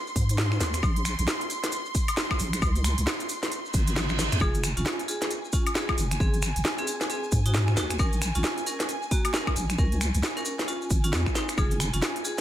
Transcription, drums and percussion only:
0.07 maracas
0.16 kick, open hi-hat, maracas
0.29 closed hi-hat, maracas
0.38 snare, maracas
0.52 finger snap, maracas
0.60 snare, open hi-hat, maracas
0.73 finger snap, closed hi-hat, maracas
0.83 kick, high woodblock, maracas
0.96 closed hi-hat, maracas
1.05 finger snap, open hi-hat, maracas
1.19 closed hi-hat, maracas
1.27 snare, maracas
1.41 closed hi-hat, maracas
1.50 open hi-hat, maracas
1.64 snare, closed hi-hat, maracas
1.72 closed hi-hat, maracas
1.85 maracas
1.95 kick, open hi-hat, maracas
2.08 closed hi-hat, high woodblock, maracas
2.17 snare, maracas
2.31 finger snap, kick, high woodblock, maracas
2.39 open hi-hat, maracas
2.53 finger snap, closed hi-hat, maracas
2.62 kick, high woodblock, maracas
2.76 closed hi-hat, maracas
2.84 finger snap, open hi-hat, maracas
2.98 closed hi-hat, maracas
3.07 snare, maracas
3.20 closed hi-hat, maracas
3.29 open hi-hat, maracas
3.42 snare, open hi-hat, maracas
3.52 closed hi-hat, maracas
3.66 maracas
3.74 kick, open hi-hat, maracas
3.87 closed hi-hat, maracas
3.96 snare, maracas
4.09 finger snap, maracas
4.19 snare, open hi-hat, maracas
4.32 finger snap, closed hi-hat, maracas
4.41 kick, high woodblock, maracas
4.54 closed hi-hat, maracas
4.64 finger snap, open hi-hat, maracas
4.77 closed hi-hat, maracas
4.85 snare, maracas
4.99 closed hi-hat, maracas
5.08 open hi-hat, maracas
5.21 snare, closed hi-hat, maracas
5.30 closed hi-hat, maracas
5.45 maracas
5.53 kick, open hi-hat, maracas
5.67 closed hi-hat, high woodblock, maracas
5.75 snare, maracas
5.89 finger snap, kick, high woodblock, maracas
5.98 open hi-hat, maracas
6.11 finger snap, closed hi-hat, maracas
6.20 kick, maracas
6.34 closed hi-hat, maracas
6.42 finger snap, open hi-hat, maracas
6.56 closed hi-hat, maracas
6.65 snare, maracas
6.78 closed hi-hat, maracas
6.87 open hi-hat, maracas
7.01 snare, open hi-hat, maracas
7.10 closed hi-hat, maracas
7.24 maracas
7.32 kick, open hi-hat, maracas
7.46 closed hi-hat, maracas
7.54 snare, maracas
7.67 finger snap, maracas
7.77 snare, open hi-hat, maracas
7.90 finger snap, closed hi-hat, maracas
7.99 kick, high woodblock, maracas
8.13 closed hi-hat, maracas
8.22 finger snap, open hi-hat, maracas
8.35 closed hi-hat, maracas
8.44 snare, maracas
8.58 closed hi-hat, maracas
8.66 open hi-hat, maracas
8.80 snare, closed hi-hat, maracas
8.89 closed hi-hat, maracas
9.02 maracas
9.11 kick, open hi-hat, maracas
9.25 closed hi-hat, high woodblock, maracas
9.34 snare, maracas
9.47 finger snap, kick, high woodblock, maracas
9.56 open hi-hat, maracas
9.70 finger snap, closed hi-hat, maracas
9.78 kick, maracas
9.92 closed hi-hat, maracas
10.01 finger snap, open hi-hat, maracas
10.14 closed hi-hat, maracas
10.23 snare, maracas
10.37 closed hi-hat, maracas
10.45 open hi-hat, maracas
10.59 snare, open hi-hat, maracas
10.68 closed hi-hat, maracas
10.82 maracas
10.90 kick, open hi-hat, maracas
11.04 closed hi-hat, maracas
11.13 snare, maracas
11.26 finger snap, kick, maracas
11.35 snare, open hi-hat, maracas
11.48 finger snap, closed hi-hat, maracas
11.57 kick, high woodblock, maracas
11.71 closed hi-hat, maracas
11.80 finger snap, open hi-hat, maracas
11.93 closed hi-hat, maracas
12.02 snare, maracas
12.16 closed hi-hat, maracas
12.25 open hi-hat, maracas
12.38 maracas

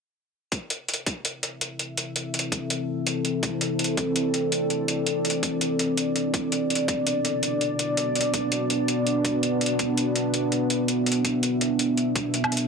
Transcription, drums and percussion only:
0.52 kick, closed hi-hat
0.70 closed hi-hat
0.89 closed hi-hat
0.94 closed hi-hat
1.06 kick, closed hi-hat
1.25 closed hi-hat
1.43 closed hi-hat
1.61 closed hi-hat
1.79 closed hi-hat
1.97 closed hi-hat
2.16 closed hi-hat
2.34 closed hi-hat
2.39 closed hi-hat
2.52 kick, closed hi-hat
2.70 closed hi-hat
3.07 closed hi-hat
3.25 closed hi-hat
3.43 kick, closed hi-hat
3.61 closed hi-hat
3.79 closed hi-hat
3.84 closed hi-hat
3.97 kick, closed hi-hat
4.16 closed hi-hat
4.34 closed hi-hat
4.52 closed hi-hat
4.70 closed hi-hat
4.88 closed hi-hat
5.06 closed hi-hat
5.25 closed hi-hat
5.30 closed hi-hat
5.43 kick, closed hi-hat
5.61 closed hi-hat
5.79 closed hi-hat
5.97 closed hi-hat
6.16 closed hi-hat
6.34 kick, closed hi-hat
6.52 closed hi-hat
6.70 closed hi-hat
6.75 closed hi-hat
6.88 kick, closed hi-hat
7.07 closed hi-hat
7.25 closed hi-hat
7.43 closed hi-hat
7.61 closed hi-hat
7.79 closed hi-hat
7.97 closed hi-hat
8.15 closed hi-hat
8.21 closed hi-hat
8.34 kick, closed hi-hat
8.52 closed hi-hat
8.70 closed hi-hat
8.88 closed hi-hat
9.07 closed hi-hat
9.25 kick, closed hi-hat
9.43 closed hi-hat
9.61 closed hi-hat
9.66 closed hi-hat
9.79 kick, closed hi-hat
9.97 closed hi-hat
10.16 closed hi-hat
10.34 closed hi-hat
10.52 closed hi-hat
10.70 closed hi-hat
10.88 closed hi-hat
11.06 closed hi-hat
11.12 closed hi-hat
11.25 kick, closed hi-hat
11.43 closed hi-hat
11.61 closed hi-hat
11.79 closed hi-hat
11.97 closed hi-hat
12.16 kick, closed hi-hat
12.34 closed hi-hat
12.44 low woodblock
12.52 closed hi-hat
12.57 closed hi-hat

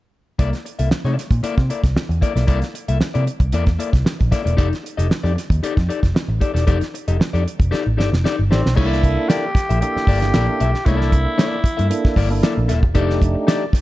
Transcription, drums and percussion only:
0.39 kick, closed hi-hat
0.53 snare, closed hi-hat
0.66 closed hi-hat
0.79 closed hi-hat
0.91 snare
1.06 closed hi-hat
1.19 snare, closed hi-hat
1.31 kick, closed hi-hat
1.44 closed hi-hat
1.58 kick, snare
1.70 closed hi-hat
1.84 kick, snare, closed hi-hat
1.97 snare
2.11 closed hi-hat
2.22 kick, closed hi-hat
2.37 snare, closed hi-hat
2.48 kick, closed hi-hat
2.62 snare, closed hi-hat
2.75 closed hi-hat
2.88 closed hi-hat
3.01 snare
3.15 closed hi-hat
3.27 closed hi-hat
3.40 kick, closed hi-hat
3.52 closed hi-hat
3.67 kick, snare, closed hi-hat
3.80 closed hi-hat
3.93 kick, snare, closed hi-hat
4.06 snare
4.21 kick, closed hi-hat
4.32 kick, snare, closed hi-hat
4.47 closed hi-hat
4.58 kick, closed hi-hat
4.73 snare, closed hi-hat
4.86 closed hi-hat
4.99 closed hi-hat
5.11 snare
5.26 closed hi-hat
5.38 snare, closed hi-hat
5.50 kick, closed hi-hat
5.64 closed hi-hat
5.77 kick, snare, closed hi-hat
5.90 closed hi-hat
6.03 kick, snare, closed hi-hat
6.16 snare
6.41 kick, closed hi-hat
6.56 snare, closed hi-hat
6.68 kick, closed hi-hat
6.81 snare, closed hi-hat
6.95 closed hi-hat
7.08 closed hi-hat
7.21 snare
7.35 closed hi-hat
7.48 closed hi-hat
7.60 kick, closed hi-hat
7.74 snare
8.00 snare
8.14 snare
8.26 snare
8.52 snare
8.66 snare
8.77 kick, crash
8.93 snare
9.03 kick, closed hi-hat
9.30 snare, closed hi-hat
9.55 kick, snare, closed hi-hat
9.70 closed hi-hat
9.82 closed hi-hat
9.97 snare
10.07 kick, open hi-hat
10.22 snare, closed hi-hat
10.34 snare, closed hi-hat
10.60 closed hi-hat
10.75 snare
10.86 kick, closed hi-hat
11.01 snare
11.12 kick, closed hi-hat
11.39 snare, closed hi-hat
11.64 kick, closed hi-hat
11.79 closed hi-hat
11.91 closed hi-hat
12.05 kick, snare
12.16 kick, open hi-hat
12.43 snare, closed hi-hat
12.69 snare, closed hi-hat
12.83 kick
12.95 kick, closed hi-hat
13.10 snare
13.22 kick, closed hi-hat
13.48 snare, closed hi-hat
13.73 kick, snare, closed hi-hat

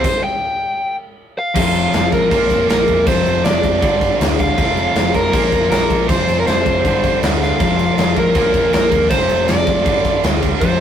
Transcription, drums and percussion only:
0.04 kick, crash
1.55 kick, crash
1.75 crash
1.93 snare, crash
2.12 kick, crash
2.31 kick, crash
2.50 kick, crash
2.70 snare, crash
2.88 kick, crash
3.07 kick, crash
3.26 crash
3.45 snare, crash
3.63 kick, crash
3.82 kick, crash
4.01 kick, crash
4.21 snare, crash
4.39 kick, crash
4.58 kick, crash
4.77 crash
4.95 snare, crash
5.14 kick, crash
5.33 kick, crash
5.52 kick, crash
5.71 snare, crash
5.90 kick, crash
6.09 kick, crash
6.28 crash
6.47 snare, crash
6.66 kick, crash
6.85 kick, crash
7.04 kick, crash
7.23 snare, crash
7.42 snare
7.60 kick, crash
7.79 crash
7.98 snare, crash
8.16 kick, crash
8.35 kick, crash
8.54 kick, crash
8.73 snare, crash
8.92 kick, crash
9.10 kick, crash
9.29 crash
9.48 snare, crash
9.67 kick, crash
9.86 kick, crash
10.05 kick, crash
10.24 snare, crash
10.43 kick, crash
10.61 kick, crash

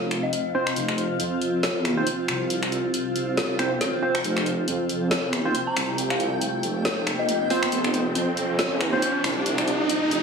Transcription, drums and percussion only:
0.11 finger snap, closed hi-hat
0.33 closed hi-hat
0.67 finger snap
0.76 closed hi-hat
0.88 finger snap
0.98 closed hi-hat
1.20 closed hi-hat
1.42 closed hi-hat
1.63 snare, closed hi-hat
1.85 finger snap, closed hi-hat
2.07 closed hi-hat
2.28 finger snap
2.50 closed hi-hat
2.63 finger snap, closed hi-hat
2.72 closed hi-hat
2.94 closed hi-hat
3.16 closed hi-hat
3.37 snare, closed hi-hat
3.59 finger snap, closed hi-hat
3.81 snare, closed hi-hat
4.15 finger snap
4.24 closed hi-hat
4.37 finger snap
4.46 closed hi-hat
4.68 closed hi-hat
4.89 closed hi-hat
5.11 snare, closed hi-hat
5.33 finger snap, closed hi-hat
5.55 closed hi-hat
5.76 finger snap, open hi-hat
5.98 closed hi-hat
6.10 finger snap
6.20 closed hi-hat
6.41 closed hi-hat
6.63 closed hi-hat
6.85 snare, closed hi-hat
7.07 finger snap, closed hi-hat
7.29 closed hi-hat
7.50 open hi-hat
7.63 finger snap
7.72 closed hi-hat
7.84 finger snap
7.94 closed hi-hat
8.15 closed hi-hat
8.37 closed hi-hat
8.59 snare, closed hi-hat
8.81 finger snap, closed hi-hat
9.02 closed hi-hat
9.24 finger snap, open hi-hat
9.46 closed hi-hat
9.58 finger snap, closed hi-hat
9.68 closed hi-hat
9.89 closed hi-hat
10.11 closed hi-hat

